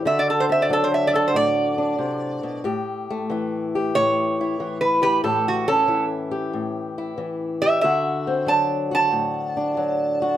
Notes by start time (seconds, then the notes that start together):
0.05 D3 F#4 E5
0.19 D5
0.30 A4
0.40 C5
0.49 C4 E5
0.62 D5
0.69 F#3 D4 A4
0.84 C5
0.94 E5
1.07 D5
1.14 F#4 A4
1.28 C5
1.34 A2 D5
1.78 D4
1.99 C3
2.43 B2
2.64 A2 G4
3.10 A3
3.30 E3 E4
3.75 G4
3.95 A2 C#5
4.41 E4
4.60 E3
4.81 B4
5.02 G4 B4
5.24 A2 G4 A4
5.48 F#4
5.68 C#4 A4
5.88 E3 E4
6.31 G4
6.53 A2
6.98 E4
7.18 E3
7.62 G4 E5
7.81 D3 F#4 E5
8.27 C4
8.46 F#3 D4 A5
8.91 F#4 A5
9.12 A2
9.57 D4
9.77 F#3
10.22 F#4